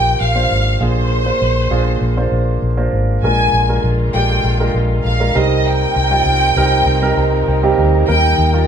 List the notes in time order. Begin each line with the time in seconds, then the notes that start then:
Already playing: A#1 A#2 A#3 D4 F4 G4 A#4 C5 G5
0.20 A#1 F5
0.35 A#3 D4 F4 C5
0.51 G#1
0.80 A#1 A#2 A#3 D4 F4 G#4 C5
1.26 A#3 D4 F4 C5
1.42 A#1
1.71 A#1 A#3 D4 F4 G#4
2.01 A#1
2.17 A#3 D4 F4 C5
2.32 A#1
2.62 A#1
2.77 A#3 D4 F4 C5
2.93 G#1
3.22 A#1 A#2 D3 G#3 A#3 D4 F4 A#4 G#5
3.53 A#1
3.69 G#3 D4 F4 A#4
3.84 A#1
4.14 A#1 G#3 D4 F4 G4 G5
4.44 A#1
4.60 G#3 D4 F4 A#4
4.74 A#1
5.05 A#1 F5
5.20 G#3 D4 F4 A#4
5.34 C2 C3 G3 C4 D#4 A#4 D#5
5.66 G5
5.96 C2
6.11 G3 C4 D#4 F4
6.26 C2
6.57 C2 G3 C4 D#4 A#4
6.86 C2
7.02 G3 C4 D#4 A#4
7.17 C2 A#5
7.48 C2 G5
7.63 G3 C4 D#4 G4 F5
7.78 D2
8.07 D#2 D#3 G3 A#3 D#4 A#4 G5
8.38 D#2
8.53 G3 A#3 D#4 F4